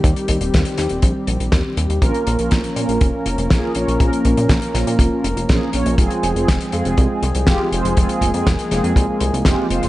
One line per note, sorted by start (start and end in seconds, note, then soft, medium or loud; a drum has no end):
0.00 0.14 D#2 loud
0.00 1.98 D#3 medium
0.00 1.98 G3 medium
0.00 2.00 C4 medium
0.00 1.98 G4 medium
0.00 kick loud
0.04 closed hi-hat medium
0.16 closed hi-hat soft
0.28 0.38 D#2 medium
0.28 kick medium
0.28 closed hi-hat medium
0.41 0.51 D#1 medium
0.41 closed hi-hat medium
0.54 0.64 D#2 loud
0.54 kick loud
0.54 snare loud
0.54 closed hi-hat medium
0.65 closed hi-hat medium
0.78 0.88 D#2 medium
0.78 snare soft
0.78 closed hi-hat medium
0.89 1.00 D#1 medium
0.89 closed hi-hat medium
1.02 1.13 A#1 loud
1.02 kick loud
1.02 closed hi-hat medium
1.27 1.38 A#1 medium
1.27 closed hi-hat medium
1.40 1.50 A#1 medium
1.40 closed hi-hat medium
1.52 1.62 D#2 loud
1.52 kick loud
1.52 snare loud
1.52 closed hi-hat medium
1.77 1.87 D#2 medium
1.77 closed hi-hat medium
1.89 1.99 D#2 medium
1.89 closed hi-hat medium
2.02 2.12 A#1 loud
2.02 9.89 F3 medium
2.02 5.95 A#3 medium
2.02 2.36 A#3 loud
2.02 5.95 C#4 medium
2.02 2.36 C#4 medium
2.02 2.36 F4 medium
2.02 5.95 A#4 medium
2.02 2.36 A#4 loud
2.02 kick loud
2.02 closed hi-hat medium
2.14 closed hi-hat soft
2.27 2.37 A#1 medium
2.27 closed hi-hat medium
2.39 2.49 A#1 medium
2.39 2.53 A#3 medium
2.39 2.53 C#4 medium
2.39 2.53 F4 medium
2.39 2.53 A#4 medium
2.39 closed hi-hat medium
2.51 2.62 A#1 loud
2.51 kick loud
2.51 snare loud
2.51 closed hi-hat medium
2.64 closed hi-hat soft
2.76 2.86 A#2 medium
2.76 3.11 A#3 medium
2.76 3.11 C#4 medium
2.76 3.11 F4 medium
2.76 3.11 A#4 loud
2.76 closed hi-hat medium
2.89 2.99 A#1 medium
2.89 closed hi-hat medium
3.01 3.11 F1 loud
3.01 kick loud
3.01 closed hi-hat medium
3.14 3.27 A#3 medium
3.14 3.27 C#4 medium
3.14 3.27 F4 medium
3.14 3.27 A#4 medium
3.26 3.36 F1 medium
3.26 closed hi-hat medium
3.38 3.48 F1 medium
3.38 closed hi-hat medium
3.50 3.61 A#1 loud
3.50 3.72 A#3 medium
3.50 3.72 C#4 medium
3.50 3.72 F4 medium
3.50 3.72 G#4 loud
3.50 kick loud
3.50 snare loud
3.50 closed hi-hat medium
3.75 3.85 A#1 medium
3.75 3.97 A#3 medium
3.75 3.97 C#4 medium
3.75 3.97 F4 medium
3.75 3.97 C#5 loud
3.75 closed hi-hat medium
3.88 3.98 A#1 medium
3.88 closed hi-hat medium
4.00 4.10 A#1 loud
4.00 4.34 A#3 medium
4.00 4.34 C#4 medium
4.00 4.34 F4 medium
4.00 4.34 A#4 loud
4.00 kick loud
4.00 closed hi-hat medium
4.13 closed hi-hat medium
4.25 4.35 A#1 medium
4.25 kick medium
4.25 closed hi-hat medium
4.37 4.47 A#2 medium
4.37 4.51 A#3 medium
4.37 4.51 C#4 medium
4.37 4.51 F4 medium
4.37 4.51 A#4 medium
4.37 closed hi-hat medium
4.49 4.60 A#1 loud
4.49 kick loud
4.49 snare loud
4.49 closed hi-hat medium
4.62 closed hi-hat medium
4.75 4.85 A#1 loud
4.75 5.09 A#3 medium
4.75 5.09 C#4 medium
4.75 5.09 F4 medium
4.75 5.09 A#4 loud
4.75 snare soft
4.75 closed hi-hat medium
4.87 4.97 A#2 medium
4.87 closed hi-hat medium
4.99 5.09 F1 loud
4.99 kick loud
4.99 closed hi-hat medium
5.12 5.25 A#3 medium
5.12 5.25 C#4 medium
5.12 5.25 F4 medium
5.12 5.25 A#4 medium
5.24 5.34 F1 medium
5.24 closed hi-hat medium
5.36 5.47 F1 medium
5.36 closed hi-hat medium
5.49 5.59 A#1 loud
5.49 5.70 A#3 loud
5.49 5.70 C#4 medium
5.49 5.70 F4 medium
5.49 5.70 G#4 loud
5.49 kick loud
5.49 snare loud
5.49 closed hi-hat medium
5.73 5.84 A#1 medium
5.73 5.95 A#3 medium
5.73 5.95 C#4 medium
5.73 5.95 F4 medium
5.73 5.95 C#5 loud
5.73 closed hi-hat medium
5.86 5.96 A#1 medium
5.86 closed hi-hat medium
5.98 6.08 F1 loud
5.98 9.89 G#3 medium
5.98 6.33 G#3 loud
5.98 7.95 C4 medium
5.98 6.33 C4 medium
5.98 6.33 F4 medium
5.98 9.89 G#4 medium
5.98 6.33 G#4 loud
5.98 kick loud
5.98 closed hi-hat medium
6.11 closed hi-hat soft
6.23 6.33 F1 medium
6.23 closed hi-hat medium
6.36 6.46 F1 medium
6.36 6.49 G#3 medium
6.36 6.49 C4 medium
6.36 6.49 F4 medium
6.36 6.49 G#4 medium
6.36 closed hi-hat medium
6.48 6.58 F1 loud
6.48 kick loud
6.48 snare loud
6.48 closed hi-hat medium
6.61 closed hi-hat medium
6.72 6.83 F2 medium
6.72 7.07 G#3 medium
6.72 7.07 C4 medium
6.72 7.07 F4 medium
6.72 7.07 G#4 loud
6.72 closed hi-hat medium
6.85 6.95 F1 medium
6.85 closed hi-hat medium
6.98 7.08 C2 loud
6.98 kick loud
6.98 closed hi-hat medium
7.10 7.24 G#3 medium
7.10 7.24 C4 medium
7.10 7.24 F4 medium
7.10 7.24 G#4 medium
7.23 7.33 C2 medium
7.23 closed hi-hat medium
7.35 7.45 C2 medium
7.35 closed hi-hat medium
7.47 7.57 F1 loud
7.47 7.69 G#3 medium
7.47 7.69 C4 medium
7.47 7.69 F4 medium
7.47 7.69 G4 loud
7.47 kick loud
7.47 snare loud
7.47 closed hi-hat medium
7.72 7.82 F1 medium
7.72 7.93 G#3 medium
7.72 7.93 C4 medium
7.72 7.93 F4 medium
7.72 7.93 C5 loud
7.72 closed hi-hat medium
7.85 7.95 F1 medium
7.85 closed hi-hat medium
7.97 8.07 F1 loud
7.97 8.31 G#3 loud
7.97 9.89 A#3 medium
7.97 8.31 C4 medium
7.97 8.31 F4 medium
7.97 8.31 G#4 loud
7.97 kick loud
7.97 closed hi-hat medium
8.09 closed hi-hat soft
8.21 8.31 F1 medium
8.21 kick medium
8.21 closed hi-hat medium
8.34 8.44 F2 medium
8.34 8.48 G#3 medium
8.34 8.48 C4 medium
8.34 8.48 F4 medium
8.34 8.48 G#4 loud
8.34 closed hi-hat medium
8.47 8.57 F1 loud
8.47 kick loud
8.47 snare loud
8.47 closed hi-hat medium
8.59 closed hi-hat medium
8.71 8.81 F1 loud
8.71 9.06 G#3 medium
8.71 9.06 C4 medium
8.71 9.06 F4 medium
8.71 9.06 G#4 loud
8.71 snare soft
8.71 closed hi-hat medium
8.84 8.94 F2 medium
8.84 closed hi-hat medium
8.96 9.06 C2 loud
8.96 kick loud
8.96 closed hi-hat medium
9.09 9.22 G#3 medium
9.09 9.22 C4 medium
9.09 9.22 F4 medium
9.09 9.22 G#4 medium
9.20 9.31 C2 medium
9.20 closed hi-hat medium
9.33 9.43 C2 medium
9.33 closed hi-hat medium
9.45 9.56 F1 loud
9.45 9.67 G#3 loud
9.45 9.67 C4 medium
9.45 9.67 F4 medium
9.45 9.67 G4 loud
9.45 kick loud
9.45 snare loud
9.45 closed hi-hat medium
9.70 9.80 F1 medium
9.70 9.89 G#3 medium
9.70 9.89 C4 medium
9.70 9.89 F4 medium
9.70 9.89 C5 loud
9.70 closed hi-hat medium
9.83 9.89 F1 medium
9.83 closed hi-hat medium